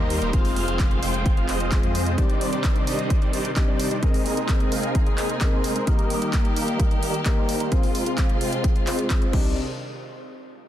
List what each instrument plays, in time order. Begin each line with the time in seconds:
Already playing: string section D#3 A#3 G4, grand piano A#3 D#4 G4 A#4
0.00 detuned saw bass D#2, supersaw synth G3 A#3 D#4 A#4 C5
0.10 open hi-hat
0.22 detuned saw bass D#1, supersaw synth G3 A#3 D#4 A#4 C5, closed hi-hat
0.32 detuned saw bass F1, string section C3 G#3 F4, supersaw synth G#3 C4 F4 C5 F5, grand piano C4 F4 G#4 C5, kick, closed hi-hat
0.45 open hi-hat
0.56 open hi-hat
0.68 detuned saw bass F1, supersaw synth G#3 C4 F4 C5 F5, closed hi-hat
0.79 kick, clap, closed hi-hat
0.91 closed hi-hat
1.03 detuned saw bass F1, supersaw synth G#3 C4 F4 C5 G5, open hi-hat
1.14 closed hi-hat
1.26 kick, closed hi-hat
1.37 detuned saw bass F1, supersaw synth G#3 C4 F4 C5 F5, closed hi-hat
1.49 detuned saw bass F1, supersaw synth G#3 C4 F4 C5 D#5, clap, open hi-hat
1.60 closed hi-hat
1.71 grand piano C4 F4 G#4 C5, kick, clap, closed hi-hat
1.83 detuned saw bass F2, supersaw synth G#3 C4 F4 C5 D#5, closed hi-hat
1.95 open hi-hat
2.07 closed hi-hat
2.17 string section D#3, grand piano D#3 C4 G4, supersaw synth G3 D4 D#4 D5, kick, closed hi-hat
2.30 closed hi-hat
2.41 open hi-hat
2.53 supersaw synth G3 D4 D#4 C5 D5, closed hi-hat
2.64 kick, clap, closed hi-hat
2.76 closed hi-hat
2.87 supersaw synth G3 D4 D#4 C5 D#5, open hi-hat
2.99 closed hi-hat
3.10 kick, closed hi-hat
3.22 supersaw synth G3 D4 D#4 C5 D5, closed hi-hat
3.33 supersaw synth G3 D4 D#4 C5 D5, open hi-hat
3.45 closed hi-hat
3.56 grand piano C4 D4 D#4 G4, kick, clap, closed hi-hat
3.68 supersaw synth G3 D4 D#4 C5 D5
3.80 open hi-hat
3.91 supersaw synth G3 D4 D#4 C5 D5, closed hi-hat
4.01 supersaw synth G#3 C4 D#4 A#4 D#5, string section A#3 G#4, grand piano C4 D#4 G#4 A#4, kick, closed hi-hat
4.14 open hi-hat
4.26 open hi-hat
4.37 supersaw synth G#3 C4 D#4 A#4 D#5, closed hi-hat
4.49 kick, clap, closed hi-hat
4.60 closed hi-hat
4.72 supersaw synth G#3 C4 D#4 A#4 F5, open hi-hat
4.83 closed hi-hat
4.95 kick, closed hi-hat
5.06 supersaw synth G#3 C4 D#4 A#4 D#5, closed hi-hat
5.18 supersaw synth G#3 C4 D#4 A#4 D#5, clap, open hi-hat
5.30 closed hi-hat
5.40 grand piano C4 D#4 G#4 A#4, kick, clap, closed hi-hat
5.53 supersaw synth G#3 C4 D#4 A#4 C5
5.64 open hi-hat
5.76 supersaw synth G#3 C4 D#4 A#4 C5, closed hi-hat
5.86 string section D#3 G4, supersaw synth G3 A#3 D#4 A#4 D#5, grand piano A#3 D#4 G4 A#4, kick, closed hi-hat
5.99 closed hi-hat
6.10 open hi-hat
6.22 supersaw synth G3 A#3 D#4 A#4 D#5, closed hi-hat
6.33 kick, clap, closed hi-hat
6.45 closed hi-hat
6.56 supersaw synth G3 A#3 D#4 A#4 F5, open hi-hat
6.68 closed hi-hat
6.80 kick, closed hi-hat
6.91 supersaw synth G3 A#3 D#4 A#4 D#5, closed hi-hat
7.03 supersaw synth G3 A#3 D#4 A#4 D#5, open hi-hat
7.14 closed hi-hat
7.25 grand piano A#3 D#4 G4 A#4, kick, clap, closed hi-hat
7.37 supersaw synth G3 A#3 D#4 A#4 C5
7.49 open hi-hat
7.60 supersaw synth G3 A#3 D#4 A#4 C5, closed hi-hat
7.71 string section C3 G#3 F4, supersaw synth G#3 C4 F4 C5 F5, grand piano C4 F4 G#4 C5, kick, closed hi-hat
7.83 open hi-hat
7.95 open hi-hat
8.06 supersaw synth G#3 C4 F4 C5 F5, closed hi-hat
8.18 kick, clap, closed hi-hat
8.29 closed hi-hat
8.41 supersaw synth G#3 C4 F4 C5 G5, open hi-hat
8.53 closed hi-hat
8.64 kick, closed hi-hat
8.76 supersaw synth G#3 C4 F4 C5 F5, closed hi-hat
8.86 supersaw synth G#3 C4 F4 C5 D#5, grand piano C4 F4 G#4 C5, clap, open hi-hat
8.99 closed hi-hat
9.10 kick, clap, closed hi-hat
9.22 supersaw synth G#3 C4 F4 C5 D#5, closed hi-hat
9.32 detuned saw bass C2, string section C3 D#3 D4, supersaw synth G3 D4 D#4 C5 D5, grand piano C4 D4 D#4 G4, kick, crash